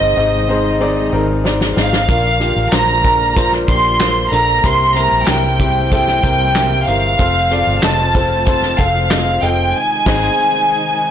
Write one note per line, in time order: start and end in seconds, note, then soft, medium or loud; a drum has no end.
0.00 0.16 G1 medium
0.00 0.45 G#2 soft
0.00 2.04 C3 medium
0.00 2.06 D#3 medium
0.00 2.06 G#3 medium
0.00 0.16 C4 medium
0.00 0.17 D#4 medium
0.00 2.06 D#4 medium
0.00 0.17 G#4 medium
0.00 0.50 C5 medium
0.00 0.10 D#5 medium
0.00 1.13 D#5 medium
0.16 1.09 G#1 medium
0.16 0.42 C4 medium
0.16 0.42 D#4 medium
0.16 0.42 G#4 medium
0.16 0.42 D#5 medium
0.49 0.74 C4 medium
0.49 0.74 D#4 medium
0.49 0.74 G#4 medium
0.49 0.74 C5 medium
0.80 1.05 C4 medium
0.80 1.06 D#4 medium
0.80 1.06 G#4 medium
0.80 1.06 D5 loud
1.13 1.73 G#1 medium
1.13 1.38 C4 medium
1.13 1.38 D#4 medium
1.13 1.38 G#4 medium
1.13 1.38 A#4 medium
1.44 1.69 C4 medium
1.44 1.69 D#4 medium
1.44 1.70 G#4 medium
1.44 1.70 D5 medium
1.44 snare medium
1.61 snare medium
1.76 2.06 G#1 medium
1.76 2.01 C4 medium
1.76 2.01 D#4 soft
1.76 2.02 G#4 medium
1.76 2.02 D#5 medium
1.76 2.69 F5 medium
1.76 snare medium
1.93 snare medium
2.08 2.53 A#1 medium
2.08 3.00 A#2 soft
2.08 4.61 D3 medium
2.08 4.61 F3 medium
2.08 2.33 A#3 medium
2.08 7.15 A#3 medium
2.08 2.33 D4 medium
2.08 4.61 F4 medium
2.08 2.34 F4 medium
2.08 2.34 A#4 medium
2.08 kick medium
2.08 closed hi-hat medium
2.40 2.65 A#3 medium
2.40 2.65 D4 medium
2.40 2.65 F4 medium
2.40 2.65 G4 medium
2.40 closed hi-hat medium
2.56 2.71 A1 medium
2.72 3.64 A#1 medium
2.72 2.97 A#3 medium
2.72 2.97 D4 medium
2.72 2.97 F4 medium
2.72 2.97 C5 medium
2.72 3.36 A#5 medium
2.72 snare loud
2.72 clap medium
2.72 closed hi-hat medium
3.04 3.29 A#3 medium
3.04 3.29 D4 medium
3.04 3.29 F4 medium
3.04 3.29 A#4 medium
3.04 kick medium
3.04 closed hi-hat medium
3.36 3.61 A#3 medium
3.36 3.61 D4 medium
3.36 3.61 F4 medium
3.36 3.61 C5 medium
3.36 3.51 A#5 medium
3.36 kick medium
3.36 closed hi-hat medium
3.52 snare soft
3.68 4.28 A#1 medium
3.68 3.93 A#3 medium
3.68 3.93 D4 medium
3.68 3.93 F4 medium
3.68 3.93 G4 medium
3.68 4.28 C6 medium
3.68 kick medium
3.68 closed hi-hat medium
4.00 4.25 A#3 medium
4.00 4.25 D4 medium
4.00 4.25 F4 medium
4.00 4.25 C5 medium
4.00 snare loud
4.00 clap medium
4.00 closed hi-hat medium
4.31 4.62 A#1 medium
4.31 4.57 A#3 medium
4.31 4.57 D4 medium
4.31 4.57 F4 medium
4.31 4.57 A4 medium
4.31 4.62 A#5 loud
4.31 closed hi-hat medium
4.64 5.08 C2 medium
4.64 11.11 C3 medium
4.64 5.56 C3 soft
4.64 7.17 E3 medium
4.64 7.17 G3 medium
4.64 4.89 C4 medium
4.64 4.89 E4 medium
4.64 4.89 G4 medium
4.64 4.89 A#4 medium
4.64 4.96 C6 loud
4.64 kick medium
4.64 closed hi-hat medium
4.95 5.20 C4 medium
4.95 5.21 E4 medium
4.95 5.21 G4 medium
4.95 5.21 A#4 medium
4.95 5.28 A#5 medium
4.95 closed hi-hat medium
5.12 5.27 A#1 medium
5.27 6.19 C2 medium
5.27 5.52 C4 medium
5.27 5.53 E4 medium
5.27 5.53 G4 medium
5.27 5.53 A#4 medium
5.27 5.91 G5 medium
5.27 snare loud
5.27 clap medium
5.27 closed hi-hat medium
5.59 5.84 C4 medium
5.59 5.85 E4 medium
5.59 5.85 G4 medium
5.59 5.85 C5 medium
5.59 kick medium
5.59 closed hi-hat medium
5.91 6.16 C4 medium
5.91 6.17 E4 medium
5.91 6.17 G4 medium
5.91 6.17 A4 medium
5.91 6.84 G5 medium
5.91 kick medium
5.91 closed hi-hat medium
6.07 snare soft
6.23 6.83 C2 loud
6.23 6.48 C4 medium
6.23 6.48 E4 medium
6.23 6.48 G4 medium
6.23 6.48 A#4 medium
6.23 kick medium
6.23 closed hi-hat medium
6.55 6.80 C4 medium
6.55 6.80 E4 medium
6.55 6.80 G4 medium
6.55 6.80 A#4 medium
6.55 snare medium
6.55 clap medium
6.55 closed hi-hat medium
6.87 7.17 G1 medium
6.87 7.12 C4 medium
6.87 7.12 E4 medium
6.87 7.12 G4 medium
6.87 7.13 A#4 medium
6.87 7.83 F5 loud
6.87 closed hi-hat medium
7.18 7.64 F1 medium
7.18 9.72 F3 medium
7.18 9.72 A3 medium
7.18 7.44 C4 medium
7.18 9.72 F4 medium
7.18 7.44 F4 medium
7.18 7.44 A4 medium
7.18 7.44 C5 medium
7.18 kick medium
7.18 closed hi-hat medium
7.51 7.76 C4 medium
7.51 7.76 F4 medium
7.51 7.76 A4 medium
7.51 7.77 D5 medium
7.51 closed hi-hat medium
7.67 7.82 G1 medium
7.82 8.75 F1 medium
7.82 8.08 C4 medium
7.82 8.08 F4 medium
7.82 8.08 A4 medium
7.82 8.08 D#5 medium
7.82 8.43 A5 medium
7.82 snare loud
7.82 clap medium
7.82 closed hi-hat medium
8.14 8.40 C4 medium
8.14 8.40 F4 medium
8.14 8.40 A4 medium
8.14 8.40 C5 medium
8.14 kick medium
8.14 closed hi-hat medium
8.46 8.71 C4 medium
8.46 8.72 F4 medium
8.46 8.72 A4 medium
8.46 8.72 C5 medium
8.46 8.77 A5 medium
8.46 kick medium
8.46 closed hi-hat medium
8.62 snare soft
8.78 9.39 F1 medium
8.78 9.03 C4 medium
8.78 9.04 F4 medium
8.78 9.04 A4 medium
8.78 9.04 C5 medium
8.78 9.43 F5 medium
8.78 kick medium
8.78 closed hi-hat medium
9.10 9.35 C4 medium
9.10 9.35 F4 medium
9.10 9.36 A4 medium
9.10 9.36 D#5 medium
9.10 snare medium
9.10 clap medium
9.10 closed hi-hat medium
9.42 9.72 F1 medium
9.42 9.67 C4 medium
9.42 9.67 F4 medium
9.42 9.68 A4 medium
9.42 9.68 D#5 medium
9.42 9.75 G5 medium
9.42 closed hi-hat medium
9.74 11.11 D#3 medium
9.74 11.11 G#3 medium
9.74 11.11 D#4 medium
9.74 11.11 G#5 medium
10.06 10.28 G#1 medium
10.06 10.28 C4 medium
10.06 10.28 D#4 medium
10.06 10.28 G#4 medium
10.06 10.28 D#5 medium
10.06 kick medium
10.06 snare medium
10.06 crash medium